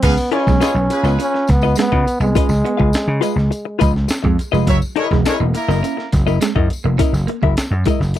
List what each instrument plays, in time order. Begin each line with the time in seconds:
0.03 slap bass C#2, trombone B3, clean electric guitar C#4, horn section G#4 B4 F5, kick, closed hi-hat, crash, tambourine
0.17 tambourine
0.32 trombone C#4, hollow-body jazz guitar F4 B4 D#5, horn section F4 G#4 C#5, muted clean electric guitar stroke, closed hi-hat
0.47 slap bass B1, clean electric guitar G#3, kick, snare, tambourine
0.60 hollow-body jazz guitar F4 B4 D#5, horn section F4 G#4 C#5, snare, closed hi-hat, tambourine
0.74 slap bass B1, clean electric guitar B3
0.90 horn section F4 G#4 B4, muted hollow-body jazz guitar stroke, muted clean electric guitar stroke, closed hi-hat, tambourine
1.03 slap bass C#2, clean electric guitar B3, hollow-body jazz guitar F4 B4 D#5, snare, tambourine
1.19 clean electric guitar C#4, trombone C#4, muted hollow-body jazz guitar stroke, closed hi-hat, tambourine
1.34 muted hollow-body jazz guitar stroke, snare
1.47 slap bass C#2, trombone B3, muted clean electric guitar stroke, kick, snare, closed hi-hat, tambourine
1.62 clean electric guitar B3, hollow-body jazz guitar F4 B4 D#5, tambourine
1.75 clean electric guitar G#3, trombone B3, snare, closed hi-hat, tambourine
1.92 slap bass C#3, hollow-body jazz guitar F4 B4 D#5, muted clean electric guitar stroke, kick
2.06 muted hollow-body jazz guitar stroke, closed hi-hat, tambourine
2.20 slap bass C2, trombone G#3, clean electric guitar B3, muted hollow-body jazz guitar stroke, tambourine
2.35 clean electric guitar C#4, hollow-body jazz guitar F4 B4 D#5, kick, closed hi-hat, tambourine
2.49 slap bass C#2, muted hollow-body jazz guitar stroke, snare, tambourine
2.64 clean electric guitar B3, muted hollow-body jazz guitar stroke, closed hi-hat
2.77 slap bass C#2, hollow-body jazz guitar F4 B4 F5, muted clean electric guitar stroke, kick
2.93 muted slap bass stroke, snare, closed hi-hat, tambourine
3.08 slap bass C#3, muted hollow-body jazz guitar stroke
3.21 clean electric guitar G#3, hollow-body jazz guitar F4 B4 D#5, closed hi-hat, tambourine
3.36 slap bass C#2, snare
3.51 muted hollow-body jazz guitar stroke, closed hi-hat, tambourine
3.65 muted hollow-body jazz guitar stroke
3.79 slap bass C#2, clean electric guitar F3, hollow-body jazz guitar F4 B4 D#5, kick, closed hi-hat, tambourine
3.96 snare
4.08 muted hollow-body jazz guitar stroke, muted slap bass stroke, snare, closed hi-hat, tambourine
4.23 slap bass F2, clean electric guitar G#3, muted hollow-body jazz guitar stroke, kick
4.39 muted clean electric guitar stroke, closed hi-hat, tambourine
4.52 slap bass F1, clean electric guitar G#3, hollow-body jazz guitar F4 B4 D#5, tambourine
4.67 slap bass F#1, clean electric guitar F#3, horn section A#4 C#5 E5, kick, closed hi-hat, tambourine
4.82 tambourine
4.96 hollow-body jazz guitar E4 A#4 D#5, horn section G#4 A#4 C#5, muted clean electric guitar stroke, closed hi-hat
5.11 slap bass E1, clean electric guitar G#3, kick, snare
5.25 hollow-body jazz guitar E4 A#4 D#5, horn section G#4 A#4 C#5, snare, closed hi-hat, tambourine
5.40 slap bass E1, clean electric guitar A#3
5.54 horn section A#3 E4 A#4, muted clean electric guitar stroke, muted hollow-body jazz guitar stroke, closed hi-hat, tambourine
5.68 slap bass F#1, clean electric guitar A#3, hollow-body jazz guitar E4 A#4 D#5, snare, tambourine
5.83 clean electric guitar C#4, muted hollow-body jazz guitar stroke, closed hi-hat, tambourine
5.97 muted hollow-body jazz guitar stroke, snare
6.12 slap bass F#1, muted clean electric guitar stroke, kick, snare, closed hi-hat, tambourine
6.27 clean electric guitar A#3, hollow-body jazz guitar E4 A#4 D#5, tambourine
6.41 clean electric guitar G#3, muted hollow-body jazz guitar stroke, snare, closed hi-hat, tambourine
6.55 slap bass F#2, hollow-body jazz guitar E4 A#4 D#5, muted clean electric guitar stroke, kick
6.70 muted hollow-body jazz guitar stroke, closed hi-hat, tambourine
6.84 slap bass F1, clean electric guitar A#3, muted hollow-body jazz guitar stroke
6.98 clean electric guitar C#4, hollow-body jazz guitar E4 A#4 D#5, kick, closed hi-hat, tambourine
7.13 slap bass F#1, muted hollow-body jazz guitar stroke, snare, tambourine
7.27 clean electric guitar A#3, muted hollow-body jazz guitar stroke, closed hi-hat
7.42 slap bass F#1, hollow-body jazz guitar E4 A#4 E5, muted clean electric guitar stroke, kick
7.56 muted slap bass stroke, snare, closed hi-hat, tambourine
7.71 slap bass F#2, muted hollow-body jazz guitar stroke
7.85 clean electric guitar G#3, hollow-body jazz guitar E4 A#4 D#5, kick, closed hi-hat, tambourine
8.00 slap bass F#1, muted hollow-body jazz guitar stroke, snare, tambourine
8.14 muted hollow-body jazz guitar stroke, closed hi-hat, tambourine